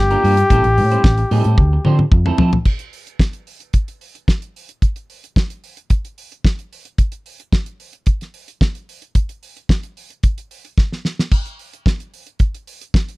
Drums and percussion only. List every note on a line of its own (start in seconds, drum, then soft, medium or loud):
0.11 closed hi-hat medium
0.24 open hi-hat medium
0.37 closed hi-hat medium
0.50 kick loud
0.50 closed hi-hat medium
0.64 closed hi-hat soft
0.78 open hi-hat medium
0.92 closed hi-hat medium
1.04 kick loud
1.04 snare loud
1.18 closed hi-hat soft
1.31 open hi-hat medium
1.44 closed hi-hat medium
1.58 kick loud
1.58 high tom medium
1.85 mid tom medium
1.99 mid tom medium
2.12 kick loud
2.26 mid tom medium
2.38 floor tom loud
2.53 floor tom loud
2.65 kick medium
2.65 crash medium
2.79 closed hi-hat soft
2.93 open hi-hat medium
3.07 closed hi-hat soft
3.19 kick loud
3.19 snare loud
3.33 closed hi-hat soft
3.47 open hi-hat medium
3.60 closed hi-hat soft
3.73 kick medium
3.73 closed hi-hat medium
3.88 closed hi-hat soft
4.01 open hi-hat medium
4.15 closed hi-hat soft
4.28 kick loud
4.28 snare loud
4.42 closed hi-hat soft
4.56 open hi-hat medium
4.69 closed hi-hat soft
4.82 kick medium
4.82 closed hi-hat medium
4.96 closed hi-hat soft
5.10 open hi-hat medium
5.24 closed hi-hat soft
5.36 kick loud
5.36 snare loud
5.50 closed hi-hat soft
5.64 open hi-hat medium
5.77 closed hi-hat soft
5.90 kick loud
5.90 closed hi-hat medium
6.05 closed hi-hat soft
6.18 open hi-hat medium
6.32 closed hi-hat soft
6.45 kick loud
6.45 snare medium
6.59 closed hi-hat soft
6.73 open hi-hat medium
6.85 closed hi-hat soft
6.98 kick loud
6.98 closed hi-hat medium
7.12 closed hi-hat soft
7.26 open hi-hat medium
7.40 closed hi-hat soft
7.53 kick loud
7.53 snare loud
7.66 closed hi-hat soft
7.80 open hi-hat medium
7.93 closed hi-hat soft
8.06 kick loud
8.06 closed hi-hat medium
8.21 snare soft
8.21 closed hi-hat soft
8.34 open hi-hat medium
8.48 closed hi-hat soft
8.61 kick loud
8.61 snare loud
8.75 closed hi-hat soft
8.89 open hi-hat medium
9.02 closed hi-hat soft
9.15 kick medium
9.15 closed hi-hat medium
9.29 closed hi-hat soft
9.43 open hi-hat medium
9.57 closed hi-hat soft
9.69 kick loud
9.69 snare loud
9.83 closed hi-hat soft
9.97 open hi-hat medium
10.10 closed hi-hat soft
10.23 kick loud
10.23 closed hi-hat medium
10.38 closed hi-hat soft
10.51 open hi-hat medium
10.65 closed hi-hat soft
10.78 kick loud
10.78 snare medium
10.92 snare medium
11.05 snare medium
11.19 snare medium
11.31 kick loud
11.31 splash medium
11.46 closed hi-hat soft
11.59 open hi-hat soft
11.73 closed hi-hat soft
11.86 kick loud
11.86 snare loud
12.00 closed hi-hat soft
12.14 open hi-hat medium
12.27 closed hi-hat soft
12.39 kick loud
12.39 closed hi-hat medium
12.54 closed hi-hat soft
12.67 open hi-hat medium
12.81 closed hi-hat soft
12.94 kick loud
12.94 snare loud
13.08 closed hi-hat soft